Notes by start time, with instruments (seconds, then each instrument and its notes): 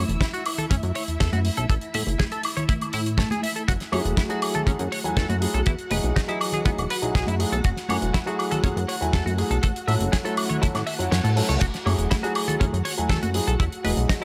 Already playing: string machine E4 E5
0.09 analog synth bass E1, closed hi-hat
0.21 clean electric guitar E4, kick, snare, closed hi-hat
0.34 clean electric guitar F#4, closed hi-hat
0.46 open hi-hat, high woodblock
0.58 clean electric guitar A4, closed hi-hat, low conga
0.71 analog synth bass F#2, clean electric guitar C#4, kick, closed hi-hat, high conga
0.83 analog synth bass F#2, closed hi-hat
0.95 clean electric guitar C#5, open hi-hat
1.08 analog synth bass E2, closed hi-hat
1.20 analog synth bass E2, clean electric guitar A4, kick, snare, closed hi-hat
1.33 analog synth bass F#2, clean electric guitar F#4, closed hi-hat, high conga
1.45 open hi-hat
1.57 analog synth bass B1, clean electric guitar A4, closed hi-hat
1.69 analog synth bass A1, clean electric guitar A4, kick, closed hi-hat
1.81 closed hi-hat
1.94 analog synth bass A2, clean electric guitar E5, open hi-hat, high conga
2.07 analog synth bass F#1, closed hi-hat
2.19 clean electric guitar G#4, kick, snare, closed hi-hat
2.32 clean electric guitar A4, closed hi-hat
2.43 open hi-hat, high woodblock
2.57 clean electric guitar C#5, closed hi-hat, low conga
2.69 clean electric guitar E4, kick, closed hi-hat, high conga
2.81 closed hi-hat, high woodblock
2.93 analog synth bass A2, clean electric guitar E4, open hi-hat
3.06 closed hi-hat
3.18 clean electric guitar A3, kick, snare, closed hi-hat
3.31 clean electric guitar G#4, closed hi-hat, high conga
3.43 clean electric guitar E5, open hi-hat
3.56 clean electric guitar A4, closed hi-hat
3.68 analog synth bass F#1, clean electric guitar F#4, string machine F#4 F#5, kick, closed hi-hat
3.80 snare, closed hi-hat
3.92 analog synth bass F#2, grand piano F#3 A3 E4 G#4, clean electric guitar C#5, open hi-hat, high conga, high woodblock
4.05 analog synth bass E1, closed hi-hat
4.17 clean electric guitar E4, kick, snare, closed hi-hat
4.29 grand piano F#3 A3 E4 G#4, clean electric guitar F#4, closed hi-hat
4.42 open hi-hat, high woodblock
4.54 clean electric guitar A4, closed hi-hat, low conga
4.67 analog synth bass F#2, grand piano F#3 A3 E4 G#4, clean electric guitar C#4, kick, closed hi-hat, high conga
4.79 analog synth bass F#2, closed hi-hat
4.92 clean electric guitar C#5, open hi-hat
5.04 analog synth bass E2, grand piano F#3 A3 E4 G#5, closed hi-hat
5.17 analog synth bass E2, clean electric guitar A4, kick, snare, closed hi-hat
5.29 analog synth bass F#2, clean electric guitar F#4, closed hi-hat, high conga
5.41 grand piano F#3 A3 E4 G#4, open hi-hat
5.54 analog synth bass B1, clean electric guitar A4, closed hi-hat
5.66 analog synth bass E2, clean electric guitar E4, kick, closed hi-hat
5.79 closed hi-hat
5.90 analog synth bass E1, grand piano F#3 E4 G#4 D#5, clean electric guitar B4, open hi-hat, high conga
6.03 analog synth bass B1, closed hi-hat
6.16 clean electric guitar D#4, kick, snare, closed hi-hat
6.28 grand piano E3 F#3 G#4 D#5, clean electric guitar E4, closed hi-hat
6.41 open hi-hat, high woodblock
6.52 clean electric guitar G#4, closed hi-hat, low conga
6.65 grand piano F#3 D#4 E4 G#4, clean electric guitar B3, kick, closed hi-hat, high conga
6.78 analog synth bass E1, closed hi-hat, high woodblock
6.90 clean electric guitar B4, open hi-hat
7.02 analog synth bass B1, grand piano F#3 D#4 E4 G#4, closed hi-hat
7.15 analog synth bass B1, clean electric guitar G#4, kick, snare, closed hi-hat
7.27 analog synth bass F#2, clean electric guitar E4, closed hi-hat, high conga
7.39 grand piano F#3 A3 E4 G#4, open hi-hat
7.52 analog synth bass B1, clean electric guitar A4, closed hi-hat
7.64 analog synth bass F#1, clean electric guitar F#4, kick, closed hi-hat
7.77 snare, closed hi-hat
7.89 analog synth bass F#2, grand piano F#3 A3 E4 G#5, clean electric guitar C#5, open hi-hat, high conga, high woodblock
8.02 analog synth bass E1, closed hi-hat
8.14 clean electric guitar E4, kick, snare, closed hi-hat
8.26 grand piano F#3 A3 E4 G#4, clean electric guitar F#4, closed hi-hat
8.39 open hi-hat, high woodblock
8.51 clean electric guitar A4, closed hi-hat, low conga
8.63 analog synth bass F#2, grand piano F#3 A3 E4 G#4, clean electric guitar C#4, kick, closed hi-hat, high conga
8.77 analog synth bass F#2, closed hi-hat
8.89 clean electric guitar C#5, open hi-hat
9.01 analog synth bass E2, grand piano F#3 A3 E4 G#5, closed hi-hat
9.13 analog synth bass E2, clean electric guitar A4, kick, snare, closed hi-hat
9.26 analog synth bass F#2, clean electric guitar F#4, closed hi-hat, high conga
9.38 grand piano F#3 A3 E4 G#4, open hi-hat
9.51 analog synth bass B1, clean electric guitar A4, closed hi-hat
9.63 analog synth bass A1, clean electric guitar A4, kick, closed hi-hat
9.76 closed hi-hat
9.87 analog synth bass A2, grand piano F#3 C#4 E4 A4, clean electric guitar E5, open hi-hat, high conga
10.00 analog synth bass F#1, closed hi-hat
10.12 clean electric guitar G#4, kick, snare, closed hi-hat
10.24 grand piano F#3 A3 C#4 E4, clean electric guitar A4, closed hi-hat
10.37 open hi-hat, high woodblock
10.50 clean electric guitar C#5, closed hi-hat, low conga
10.62 grand piano F#3 C#4 E4 A4, clean electric guitar E4, kick, closed hi-hat, reverse cymbal, high conga
10.75 analog synth bass A2, snare, closed hi-hat, high woodblock
10.87 clean electric guitar E5, open hi-hat
10.99 analog synth bass F#2, grand piano F#3 C#4 E4 F#4, closed hi-hat
11.12 analog synth bass F#2, clean electric guitar C#5, snare, closed hi-hat
11.24 analog synth bass A2, clean electric guitar A4, closed hi-hat, high conga
11.36 grand piano F#3 C#4 E4 A4, open hi-hat
11.49 analog synth bass C#2, clean electric guitar C#5, closed hi-hat
11.61 analog synth bass F#1, clean electric guitar F#4, string machine F#4 F#5, kick, closed hi-hat, crash
11.74 snare, closed hi-hat
11.86 analog synth bass F#2, grand piano F#3 A3 E4 G#4, clean electric guitar C#5, open hi-hat, high conga, high woodblock
11.99 analog synth bass E1, closed hi-hat
12.11 clean electric guitar E4, kick, snare, closed hi-hat
12.23 grand piano F#3 A3 E4 G#4, clean electric guitar F#4, closed hi-hat
12.35 open hi-hat, high woodblock
12.48 clean electric guitar A4, closed hi-hat, low conga
12.60 analog synth bass F#2, grand piano F#3 A3 E4 G#4, clean electric guitar C#4, kick, closed hi-hat, high conga
12.73 analog synth bass F#2, closed hi-hat
12.85 clean electric guitar C#5, open hi-hat
12.98 analog synth bass E2, grand piano F#3 A3 E4 G#5, closed hi-hat
13.09 analog synth bass E2, clean electric guitar A4, kick, snare, closed hi-hat
13.23 analog synth bass F#2, clean electric guitar F#4, closed hi-hat, high conga
13.34 grand piano F#3 A3 E4 G#4, open hi-hat
13.48 analog synth bass B1, clean electric guitar A4, closed hi-hat
13.60 analog synth bass E2, clean electric guitar E4, kick, closed hi-hat
13.72 closed hi-hat
13.84 analog synth bass E1, grand piano F#3 E4 G#4 D#5, clean electric guitar B4, open hi-hat, high conga
13.97 analog synth bass B1, closed hi-hat
14.09 clean electric guitar D#4, kick, snare, closed hi-hat